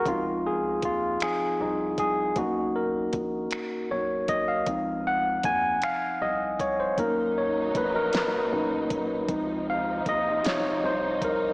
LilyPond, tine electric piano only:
\new Staff \with { instrumentName = "Tine electric piano" } { \time 6/8 \key des \major \tempo 4. = 52 << { f'8 aes'8 f'8 aes'8 ees'8 aes'8 | ges'8 bes'4 r8 des''8 ees''16 f''16~ | f''8 ges''8 aes''8 f''8 ees''8 des''16 c''16 | bes'8 des''8 ces''16 bes'16 ces''4. |
r8 f''8 ees''8 des''8 c''8 bes'8 | } \\ { <f c' ees'>4. <f c' ees'>8 r4 | <bes des' ees'>4. r4. | <f c' ees'>4. r4. | <bes des' ees'>4. r8 <bes, des' ees'>8 r8 |
<f c' ees'>8 r2 r8 | } >> }